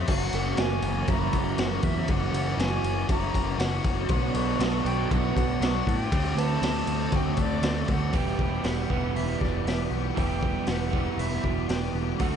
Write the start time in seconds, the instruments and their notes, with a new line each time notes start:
0.07 picked electric bass F#1, overdriven electric guitar F#2 C#3 E3 A#3 C#4 E4 F#4, twelve-string acoustic guitar F#4, flute F#5, kick, crash
0.33 picked electric bass F#1, twelve-string acoustic guitar A#4, ride
0.57 picked electric bass F#1, overdriven electric guitar E3 A#3 C#4, twelve-string acoustic guitar F#4, flute G#5, snare, ride
0.61 overdriven electric guitar F#4
0.82 picked electric bass F#1, ride
1.07 picked electric bass F#1, overdriven electric guitar F#2 C#3 E3 A#3 C#4 F#4, twelve-string acoustic guitar E4, flute A#5, kick, ride
1.33 picked electric bass F#1, twelve-string acoustic guitar F#4, kick, ride
1.57 picked electric bass F#1, overdriven electric guitar E3 A#3 C#4 F#4, twelve-string acoustic guitar F#4, flute F#5, snare, ride
1.83 picked electric bass E2, flute E5, kick, ride
2.07 picked electric bass F#1, overdriven electric guitar F#2 C#3 E3 A#3 C#4 F#4, twelve-string acoustic guitar F#4, flute F#5, kick, ride
2.33 picked electric bass F#1, twelve-string acoustic guitar A#4, ride
2.57 picked electric bass F#1, overdriven electric guitar E3 A#3 C#4 F#4, twelve-string acoustic guitar F#4, flute G#5, snare, ride
2.83 picked electric bass F#1, ride
3.07 picked electric bass F#1, overdriven electric guitar F#2 C#3 E3 A#3 C#4 F#4, twelve-string acoustic guitar E4, flute A#5, kick, ride
3.34 picked electric bass F#1, twelve-string acoustic guitar F#4, kick, ride
3.58 picked electric bass F#1, overdriven electric guitar E3 A#3 C#4 F#4, twelve-string acoustic guitar F#4, flute F#5, snare, ride
3.84 picked electric bass F#1, kick, ride
4.09 picked electric bass B1, overdriven electric guitar B2 F#3 B3 D4 F#4, twelve-string acoustic guitar F#4, flute F#5, kick, ride
4.34 picked electric bass B1, twelve-string acoustic guitar A4, ride
4.59 picked electric bass B1, overdriven electric guitar F#3 B3 D4 F#4, twelve-string acoustic guitar F#4, snare, ride
4.85 picked electric bass B1, flute G5, ride
5.10 picked electric bass B1, overdriven electric guitar B2 F#3 B3 D4 F#4, twelve-string acoustic guitar E4, flute F#5, kick, ride
5.36 picked electric bass B1, twelve-string acoustic guitar F#4, kick, ride
5.60 picked electric bass B1, overdriven electric guitar F#3 B3 D4 F#4, twelve-string acoustic guitar F#4, snare, ride
5.87 picked electric bass A2, flute G5, kick, ride
6.10 picked electric bass D2, overdriven electric guitar D3 A3 C4 F#4, twelve-string acoustic guitar G4, kick, ride
6.36 picked electric bass D2, twelve-string acoustic guitar B4, flute A5, ride
6.61 picked electric bass D2, overdriven electric guitar D3 A3 C4 F#4, twelve-string acoustic guitar A4, snare, ride
6.87 picked electric bass D2, ride
7.11 picked electric bass D2, overdriven electric guitar D3 A3 C4, twelve-string acoustic guitar F#4, kick, ride
7.15 overdriven electric guitar F#4, flute G5
7.37 picked electric bass D2, twelve-string acoustic guitar G4, kick, ride
7.41 flute D5
7.61 picked electric bass D2, overdriven electric guitar D3 A3 C4 F#4, snare, ride
7.88 picked electric bass D2, kick, ride
7.92 flute F#5
8.13 picked electric bass E1, overdriven electric guitar E2 B2 E3 G3 B3 E4 G4, twelve-string acoustic guitar G4, flute G5, kick, open hi-hat
8.37 picked electric bass E1, overdriven electric guitar E3 G3 B3 G4, twelve-string acoustic guitar B4, kick
8.64 picked electric bass E1, overdriven electric guitar E3 G3 B3 G4, twelve-string acoustic guitar G4, flute F#5, snare, open hi-hat
8.90 picked electric bass E1, overdriven electric guitar E3 G3 B3 E4, kick
9.14 picked electric bass E1, twelve-string acoustic guitar E4, flute E5, open hi-hat
9.39 picked electric bass E1, overdriven electric guitar E3 G3 B3 G4, twelve-string acoustic guitar F#4, flute D5, kick, snare
9.64 picked electric bass E1, overdriven electric guitar E3 G3 B3 G4, flute E5, snare, open hi-hat
9.90 picked electric bass B1, overdriven electric guitar E3 G3 B3 G4, flute F#5
10.15 picked electric bass E1, overdriven electric guitar E2 B2 E3 G3 B3 E4 G4, twelve-string acoustic guitar G4, flute G5, kick, open hi-hat
10.41 overdriven electric guitar E3 G3 B3 G4, twelve-string acoustic guitar B4, kick
10.67 picked electric bass E1, overdriven electric guitar E3 G3 B3 G4, twelve-string acoustic guitar G4, flute F#5, snare, open hi-hat
10.90 overdriven electric guitar E3 G3 B3 E4, kick
11.18 picked electric bass E1, twelve-string acoustic guitar E4, flute E5, open hi-hat
11.44 picked electric bass E1, overdriven electric guitar E3 G3 B3 G4, twelve-string acoustic guitar F#4, kick
11.69 picked electric bass E1, overdriven electric guitar E3 G3 B3 G4, flute G5, snare, open hi-hat
11.83 snare
11.93 picked electric bass E1, overdriven electric guitar G3 B3 G4
11.97 overdriven electric guitar E3
12.18 picked electric bass D2, overdriven electric guitar D3 A3 C4, twelve-string acoustic guitar F#4, flute F#5, kick, open hi-hat
12.22 overdriven electric guitar F#4